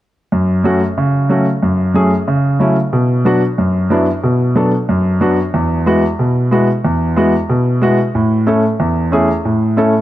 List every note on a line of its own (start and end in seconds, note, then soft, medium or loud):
0.32 0.82 F#2 medium
0.64 0.79 F#3 medium
0.64 0.79 A3 medium
0.64 0.79 C#4 medium
0.64 0.80 F#4 medium
0.98 1.47 C#3 medium
1.29 1.44 F#3 medium
1.29 1.44 A3 medium
1.29 1.45 C#4 medium
1.29 1.45 F#4 medium
1.63 2.13 F#2 medium
1.94 2.09 F#3 medium
1.94 2.10 A3 medium
1.94 2.10 C#4 medium
1.94 2.10 G#4 medium
2.28 2.78 C#3 medium
2.60 2.75 F#3 medium
2.60 2.75 A3 medium
2.60 2.75 C#4 medium
2.60 2.75 E4 medium
2.93 3.43 B2 medium
3.25 3.40 F#3 medium
3.25 3.40 B3 medium
3.25 3.40 D4 medium
3.25 3.40 F#4 medium
3.58 4.08 F#2 medium
3.90 4.05 F#3 medium
3.90 4.05 B3 medium
3.90 4.06 D4 medium
3.90 4.06 E4 medium
4.24 4.73 B2 medium
4.55 4.70 F#3 medium
4.55 4.71 B3 medium
4.55 4.71 D4 medium
4.55 4.71 A4 medium
4.89 5.39 F#2 medium
5.21 5.36 F#3 medium
5.21 5.36 B3 medium
5.21 5.36 D4 medium
5.21 5.36 F#4 medium
5.54 6.04 E2 medium
5.86 6.01 G#3 medium
5.86 6.01 B3 medium
5.86 6.01 E4 medium
5.86 6.01 F#4 medium
6.19 6.69 B2 medium
6.51 6.66 G#3 medium
6.51 6.66 B3 medium
6.51 6.66 E4 medium
6.51 6.67 F#4 medium
6.85 7.34 E2 medium
7.16 7.31 G#3 medium
7.16 7.31 B3 medium
7.16 7.32 E4 medium
7.16 7.32 F#4 medium
7.49 7.99 B2 medium
7.81 7.96 G#3 medium
7.81 7.97 B3 medium
7.81 7.97 E4 medium
7.81 7.97 F#4 medium
8.15 8.65 A2 medium
8.47 8.62 A3 medium
8.47 8.62 C#4 medium
8.47 8.62 E4 medium
8.47 8.62 A4 medium
8.80 9.30 E2 medium
9.12 9.27 A3 medium
9.12 9.27 C#4 medium
9.12 9.27 E4 medium
9.12 9.27 G#4 medium
9.45 9.95 A2 medium
9.77 9.92 A3 medium
9.77 9.92 C#4 medium
9.77 9.92 E4 medium
9.77 9.93 A4 medium